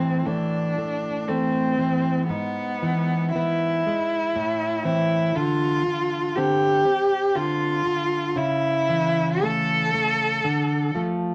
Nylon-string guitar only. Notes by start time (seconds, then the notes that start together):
Already playing: A2 E3
0.26 E3 A3
0.78 A3
1.28 E3 A3
1.78 E3
2.29 G#2
2.82 E3
3.35 E3 B3
3.87 G#3
4.36 A2
4.85 E3 C4
5.36 D3
5.86 D3
6.37 D3 C4
6.85 C4
7.35 D3 C4
7.85 D3
8.36 C#3
8.89 E3
9.42 E3 A3
9.94 A3
10.44 D3
10.95 F3 A3